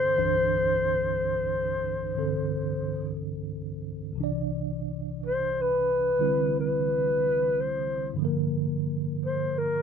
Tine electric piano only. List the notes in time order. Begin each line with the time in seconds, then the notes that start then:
Already playing: C2 G2 D3 E3 C4 D4 A4 D5
0.17 C2 G2 E3 D4 C5
2.15 G2 D3 C4 A4
4.13 C2 C3
4.18 E3 D4
4.24 D5
6.19 D3 G3 C4 E4
8.13 G2 D3
8.19 F3 A#3
8.25 A#4